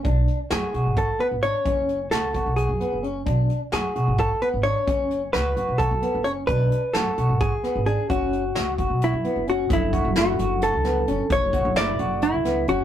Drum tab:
HH |xxxxxxx|xxxxxxx|xxxxxxx|xxxxxxx|
SD |--o----|--o----|--o----|--o----|
BD |o---o--|o--o---|o---o--|o---o--|

HH |xxxxxxx|xxxxxxx|xxxxxxx|xxxxxxx|
SD |--o--o-|--o----|--o--o-|--o--o-|
BD |o---o--|o--o---|oo-----|oo-----|